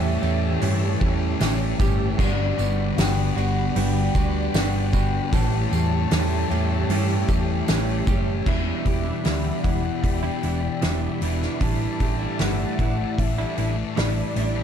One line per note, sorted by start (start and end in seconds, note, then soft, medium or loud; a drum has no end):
0.00 0.16 E2 loud
0.00 0.62 A2 medium
0.00 0.23 E3 medium
0.00 0.60 E3 medium
0.00 0.61 E3 medium
0.00 0.24 G3 medium
0.00 0.22 A3 medium
0.00 0.22 C#4 medium
0.00 0.21 G4 medium
0.00 2.15 G4 medium
0.00 2.16 C#5 medium
0.00 0.63 E5 medium
0.00 2.15 E5 medium
0.00 2.16 A5 medium
0.22 0.55 E2 medium
0.22 1.01 E3 medium
0.22 0.62 G3 medium
0.22 1.40 A3 medium
0.22 1.00 A3 medium
0.22 0.62 C#4 medium
0.22 0.63 G4 medium
0.22 tambourine soft
0.62 0.94 G2 medium
0.62 1.40 A2 medium
0.62 1.38 E3 medium
0.62 1.03 G3 loud
0.62 1.01 C#4 medium
0.62 1.00 G4 medium
0.62 open hi-hat medium
0.62 tambourine soft
1.01 1.33 E2 medium
1.01 1.40 E3 medium
1.01 1.41 G3 medium
1.01 1.41 A3 medium
1.01 1.40 C#4 medium
1.01 1.42 G4 medium
1.01 kick medium
1.40 1.73 A1 medium
1.40 2.16 A2 medium
1.40 2.16 E3 medium
1.40 2.17 E3 medium
1.40 1.81 G3 medium
1.40 2.19 A3 medium
1.40 2.18 A3 medium
1.40 1.79 C#4 medium
1.40 1.79 G4 medium
1.40 snare loud
1.40 open hi-hat medium
1.40 tambourine medium
1.79 2.12 G1 medium
1.79 2.18 G3 medium
1.79 2.17 C#4 medium
1.79 2.20 G4 medium
1.79 kick loud
1.79 tambourine medium
2.18 2.51 G1 medium
2.18 2.96 G2 medium
2.18 2.58 D3 medium
2.18 2.97 G3 medium
2.18 2.58 G3 loud
2.18 2.59 B3 medium
2.18 2.58 D4 loud
2.18 2.57 F#4 loud
2.18 5.30 D5 medium
2.18 2.99 D5 loud
2.18 5.30 B5 medium
2.18 kick loud
2.18 crash medium
2.18 tambourine medium
2.58 2.91 G1 medium
2.58 2.97 D3 medium
2.58 2.98 G3 medium
2.58 2.97 B3 medium
2.58 2.98 D4 medium
2.58 2.99 F#4 medium
2.58 tambourine medium
2.97 3.30 G1 medium
2.97 3.76 G2 medium
2.97 3.37 D3 medium
2.97 3.76 G3 medium
2.97 3.36 G3 loud
2.97 3.38 B3 medium
2.97 3.36 D4 medium
2.97 3.35 F#4 medium
2.97 3.38 G5 loud
2.97 snare loud
2.97 open hi-hat medium
2.97 tambourine medium
3.36 3.69 G1 medium
3.36 4.16 D3 medium
3.36 4.14 G3 medium
3.36 3.76 B3 medium
3.36 3.76 D4 medium
3.36 3.77 F#4 medium
3.36 3.78 F#5 medium
3.36 tambourine soft
3.76 4.08 G1 medium
3.76 4.54 G3 medium
3.76 4.16 B3 medium
3.76 4.15 D4 loud
3.76 4.14 F#4 medium
3.76 4.92 G5 loud
3.76 open hi-hat medium
3.76 tambourine soft
4.15 4.47 D2 medium
4.15 4.53 D3 medium
4.15 4.55 G3 medium
4.15 4.54 B3 medium
4.15 4.54 D4 medium
4.15 4.55 F#4 medium
4.15 kick medium
4.15 tambourine medium
4.54 5.19 G1 medium
4.54 5.30 G2 medium
4.54 5.31 D3 medium
4.54 5.34 G3 medium
4.54 5.33 G3 medium
4.54 4.95 B3 medium
4.54 4.94 D4 medium
4.54 4.92 F#4 medium
4.54 snare loud
4.54 open hi-hat medium
4.54 tambourine loud
4.92 5.32 B3 medium
4.92 5.31 D4 medium
4.92 5.30 F#4 medium
4.92 5.34 G5 loud
4.92 kick medium
4.92 tambourine medium
5.32 5.65 A1 medium
5.32 6.10 A2 medium
5.32 6.11 A2 medium
5.32 5.72 E3 medium
5.32 6.09 E3 medium
5.32 5.72 G3 medium
5.32 5.70 A3 medium
5.32 5.72 C#4 medium
5.32 8.44 G4 medium
5.32 5.70 G4 medium
5.32 8.44 C#5 medium
5.32 8.44 E5 medium
5.32 7.68 A5 loud
5.32 8.44 A5 medium
5.32 kick loud
5.32 open hi-hat medium
5.32 tambourine medium
5.71 6.04 E2 medium
5.71 6.11 E3 medium
5.71 6.10 G3 medium
5.71 6.12 A3 medium
5.71 6.50 A3 medium
5.71 6.11 C#4 medium
5.71 6.11 G4 medium
5.71 tambourine medium
6.10 6.44 E2 medium
6.10 6.90 A2 medium
6.10 6.89 E3 medium
6.10 6.51 E3 medium
6.10 6.51 G3 medium
6.10 6.49 A3 medium
6.10 6.50 C#4 medium
6.10 6.49 G4 medium
6.10 snare loud
6.10 open hi-hat medium
6.10 tambourine medium
6.50 6.83 E2 medium
6.50 7.29 E3 medium
6.50 6.90 G3 medium
6.50 7.27 A3 medium
6.50 7.68 A3 medium
6.50 6.90 C#4 medium
6.50 6.91 G4 medium
6.50 tambourine soft
6.89 7.22 G2 medium
6.89 7.68 A2 medium
6.89 7.67 E3 medium
6.89 7.31 G3 medium
6.89 7.29 C#4 medium
6.89 7.28 G4 loud
6.89 open hi-hat medium
7.29 7.61 E2 medium
7.29 7.68 E3 medium
7.29 7.67 G3 medium
7.29 7.69 A3 medium
7.29 7.68 C#4 medium
7.29 7.69 G4 medium
7.29 kick medium
7.29 tambourine medium
7.68 8.01 A1 medium
7.68 8.44 A2 medium
7.68 8.44 E3 medium
7.68 8.45 E3 medium
7.68 8.08 G3 medium
7.68 8.47 A3 medium
7.68 8.45 A3 medium
7.68 8.08 C#4 medium
7.68 8.06 G4 medium
7.68 snare loud
7.68 open hi-hat medium
7.68 tambourine loud
8.07 8.40 F#1 medium
8.07 8.46 G3 medium
8.07 8.45 C#4 medium
8.07 8.44 G4 medium
8.07 kick medium
8.07 tambourine medium
8.46 8.71 E1 medium
8.46 8.84 E2 medium
8.46 9.05 E2 medium
8.46 9.06 B2 medium
8.46 8.85 B2 medium
8.46 8.67 E3 medium
8.46 8.87 E3 medium
8.46 8.66 G3 medium
8.46 8.66 D4 medium
8.46 8.65 E4 medium
8.46 11.58 G4 medium
8.46 11.58 D5 medium
8.46 9.64 E5 loud
8.46 14.63 E5 medium
8.46 11.57 B5 medium
8.46 kick loud
8.46 crash loud
8.65 9.07 E3 medium
8.65 9.06 G3 medium
8.65 9.05 D4 medium
8.65 9.04 E4 medium
8.86 9.10 E1 medium
8.86 9.23 E2 medium
8.86 9.24 B2 medium
8.86 9.26 E3 medium
8.86 12.00 G4 medium
8.86 kick medium
8.86 open hi-hat medium
9.05 9.25 E3 medium
9.05 9.25 G3 medium
9.05 9.26 D4 medium
9.05 9.26 E4 medium
9.24 9.50 D2 medium
9.24 10.03 E2 medium
9.24 9.63 E2 loud
9.24 10.04 B2 medium
9.24 9.45 B2 loud
9.24 9.63 E3 medium
9.24 9.44 E3 loud
9.24 9.63 G3 loud
9.24 10.81 B3 medium
9.24 9.64 D4 medium
9.24 9.65 E4 medium
9.24 snare loud
9.24 open hi-hat medium
9.44 9.64 B2 medium
9.44 9.66 E3 medium
9.63 9.89 E1 medium
9.63 10.23 E2 medium
9.63 9.85 B2 medium
9.63 9.85 E3 medium
9.63 9.84 E3 medium
9.63 9.84 G3 medium
9.63 9.84 D4 medium
9.63 9.84 E4 medium
9.63 10.02 F#5 loud
9.63 kick medium
9.63 open hi-hat medium
9.84 10.23 B2 soft
9.84 10.22 E3 medium
9.84 muted clean electric guitar stroke soft
10.02 10.28 E1 medium
10.02 11.22 D4 medium
10.02 10.13 F#5 loud
10.02 kick medium
10.02 open hi-hat medium
10.13 11.21 G5 loud
10.23 10.43 B2 medium
10.23 10.44 E3 medium
10.23 10.42 E3 medium
10.23 10.43 G3 medium
10.23 10.44 D4 medium
10.23 10.44 E4 medium
10.42 10.68 E1 medium
10.42 10.81 E2 medium
10.42 10.63 B2 medium
10.42 10.63 E3 medium
10.42 10.62 E3 medium
10.42 10.63 G3 medium
10.42 10.63 D4 medium
10.42 10.62 E4 medium
10.42 open hi-hat medium
10.62 10.82 B2 medium
10.62 10.83 E3 medium
10.82 11.07 E1 medium
10.82 11.58 E2 medium
10.82 11.20 E2 loud
10.82 11.59 B2 medium
10.82 11.21 B2 loud
10.82 11.21 E3 medium
10.82 11.23 E3 loud
10.82 11.22 G3 loud
10.82 11.61 B3 medium
10.82 11.23 D4 loud
10.82 11.23 E4 medium
10.82 snare loud
10.82 open hi-hat medium
11.21 11.46 E1 medium
11.21 11.59 E2 medium
11.21 11.42 B2 medium
11.21 11.60 E3 medium
11.21 11.41 E3 medium
11.21 11.61 G3 medium
11.21 11.62 D4 medium
11.21 11.62 E4 medium
11.21 open hi-hat medium
11.41 11.60 B2 medium
11.41 11.61 E3 medium
11.41 snare soft
11.60 11.85 A1 medium
11.60 12.19 A2 medium
11.60 12.00 A2 medium
11.60 12.24 E3 medium
11.60 12.02 E3 medium
11.60 11.82 G3 medium
11.60 12.01 A3 medium
11.60 11.81 D4 loud
11.60 11.80 E4 medium
11.60 14.63 D5 medium
11.60 12.41 A5 loud
11.60 14.63 A5 medium
11.60 kick loud
11.60 open hi-hat medium
11.80 12.21 G3 medium
11.80 12.20 D4 medium
11.80 12.18 E4 medium
12.00 12.25 A1 medium
12.00 12.39 A2 medium
12.00 12.41 E3 medium
12.00 12.40 A3 medium
12.00 14.00 G4 medium
12.00 kick medium
12.00 open hi-hat medium
12.19 12.39 G3 medium
12.19 12.39 D4 medium
12.19 12.40 E4 medium
12.38 12.64 G1 medium
12.38 13.17 A2 medium
12.38 12.78 A2 loud
12.38 12.78 E3 loud
12.38 12.61 E3 loud
12.38 12.79 G3 medium
12.38 13.96 A3 medium
12.38 12.58 A3 loud
12.38 12.79 D4 loud
12.38 12.80 E4 medium
12.38 13.20 F#5 loud
12.38 snare loud
12.38 open hi-hat medium
12.60 12.79 E3 medium
12.60 12.80 A3 medium
12.78 13.03 A1 medium
12.78 13.38 A2 medium
12.78 12.99 E3 medium
12.78 12.99 G3 medium
12.78 12.97 A3 medium
12.78 12.99 D4 medium
12.78 12.98 E4 medium
12.78 kick medium
12.78 open hi-hat medium
12.98 13.39 E3 soft
12.98 13.37 A3 medium
12.98 muted clean electric guitar stroke soft
13.18 13.43 A1 medium
13.18 14.36 D4 medium
13.18 13.98 E5 medium
13.18 kick medium
13.18 open hi-hat medium
13.38 13.57 E3 medium
13.38 13.57 G3 medium
13.38 13.58 A3 medium
13.38 13.58 D4 medium
13.38 13.58 E4 medium
13.57 13.82 A1 medium
13.57 13.95 A2 medium
13.57 13.77 E3 medium
13.57 13.78 G3 medium
13.57 13.76 A3 medium
13.57 13.77 D4 medium
13.57 13.76 E4 medium
13.57 open hi-hat medium
13.77 13.96 E3 medium
13.77 13.97 A3 medium
13.77 muted clean electric guitar stroke medium
13.96 14.21 A1 medium
13.96 14.63 A2 medium
13.96 14.35 A2 medium
13.96 14.34 E3 medium
13.96 14.35 E3 loud
13.96 14.36 G3 medium
13.96 14.63 A3 medium
13.96 14.37 A3 medium
13.96 14.37 D4 loud
13.96 14.37 E4 loud
13.96 14.55 D5 medium
13.96 snare loud
13.96 open hi-hat medium
14.36 14.60 A1 medium
14.36 14.63 A2 medium
14.36 14.63 E3 medium
14.36 14.56 E3 medium
14.36 14.63 G3 medium
14.36 14.54 A3 medium
14.36 14.63 D4 medium
14.36 14.63 E4 medium
14.36 open hi-hat medium
14.55 14.63 E3 medium
14.55 14.63 A3 medium